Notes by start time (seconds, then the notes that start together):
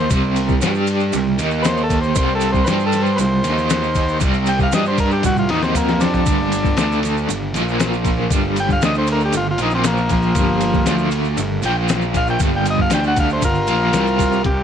Already playing: D#3 A#3 D#4 A#4 C5 D#5
0.10 C2 C3 G3 C4 F4 G4, kick, ride, maracas
0.36 ride, maracas
0.49 kick, maracas
0.61 G2 D3 G3 D4 G4 D5, snare, ride, maracas
0.75 maracas
0.87 ride, maracas
1.00 maracas
1.13 C2 C3 G3 A#3 C4 F4 A#4, ride, maracas
1.38 D#2 D#3 A#3 D#4 D#5, ride, maracas
1.51 maracas
1.62 B4, snare, ride, maracas
1.67 C5
1.77 maracas
1.83 A4
1.90 kick, ride, maracas
2.01 C5, maracas
2.15 C2 C3 G3 A#3 C4 F4 G4 C5, kick, ride, maracas
2.35 A4
2.41 ride, maracas
2.52 C5, kick, maracas
2.64 G2 D3 G3 D4 G4 B4, snare, ride, maracas
2.69 C5
2.80 maracas
2.86 A4
2.92 snare, ride, maracas
3.03 C5, maracas
3.16 C2 C3 G3 A#4 B4, ride, maracas
3.20 A#3 C4 F4 C5
3.44 D#2 D#3 A#3 D#4 D#5, ride, maracas
3.58 snare, maracas
3.70 snare, ride, maracas
3.83 maracas
3.95 kick, ride, maracas
4.08 maracas
4.20 C2 C3 G3 C4 F4 G4, kick, ride, maracas
4.34 maracas
4.46 G5, ride, maracas
4.59 F5, kick, maracas
4.72 G2 D3 G3 D4 G4 D5 D#5, snare, ride, maracas
4.85 C5, maracas
4.98 A#4, kick, ride, maracas
5.11 G4, maracas
5.23 C2 C3 G3 A#3 C4 F4 F#4, kick, high tom, ride, maracas
5.36 F4, high tom, maracas
5.49 D#2 D#3 A#3 D#4, snare, ride
5.63 C4, snare, maracas
5.74 F2 C3 F3 A#3 C4 F4 C5, mid tom, ride, maracas
5.88 snare, maracas
6.01 D4, snare, ride, maracas
6.14 floor tom, maracas
6.26 G1 G2 D3 G3 A3 A#3 G4, kick, ride, maracas
6.52 ride, maracas
6.64 kick, maracas
6.77 D2 D3 A3 D4, snare, ride, maracas
6.92 maracas
7.03 snare, ride, maracas
7.17 maracas
7.28 G1 G2 D3 A#3 G4, ride, maracas
7.53 A#1 A#2 F3 A#3 F4, ride, maracas
7.69 maracas
7.80 snare, ride, maracas
7.93 maracas
8.05 kick, ride, maracas
8.18 snare
8.29 G1 G2 D3 G3 A3 D4 G4 A4, kick, ride, maracas
8.56 G5, ride, maracas
8.69 F5, kick, maracas
8.80 D2 D3 A3 D4 A4 D5, snare, ride, maracas
8.85 D#5
8.94 C5, maracas
9.07 ride, maracas
9.12 A#4
9.20 maracas
9.25 G4
9.33 G1 G2 D3 A#3 G4, ride, maracas
9.37 F4
9.51 F4
9.58 A#1 A#2 F3 A#3 F4, ride, maracas
9.63 D#4
9.71 snare, maracas
9.75 C4
9.84 A#3, snare, ride, maracas
9.97 maracas
10.09 F3 A#3, kick, ride, maracas
10.23 maracas
10.35 G1 G2 D3 G3 D4 G4 A4 A#4, kick, ride, maracas
10.61 ride, maracas
10.74 kick, maracas
10.86 D2 D3 A3 D4 D5, snare, ride, maracas
10.98 maracas
11.11 ride, maracas
11.24 maracas
11.37 G1 G2 D3 A#3 G4, ride, maracas
11.62 A#1 A#2 F3 A#3 F4 G5, ride, maracas
11.88 snare, ride, maracas
12.02 maracas
12.14 F5, kick, ride, maracas
12.27 G5, maracas
12.39 G1 G2 D3 G3 D4 G4 A5, kick, ride, maracas
12.56 G5
12.66 ride, maracas
12.70 D#5
12.78 F5, kick
12.90 D2 D3 A3 D4 D5 G5, snare, ride, maracas
13.04 F#5, maracas
13.16 F5, kick, snare, ride, maracas
13.30 C5, maracas
13.42 G1 G2 D3 A#3 F4 A#4, kick, ride, maracas
13.55 maracas
13.67 A#1 A#2 F3 A#3, ride, maracas
13.93 C2 C3 G3 C4, snare, ride, maracas
14.07 maracas
14.19 kick, snare, ride, maracas
14.32 maracas
14.44 C2 G4, kick, closed hi-hat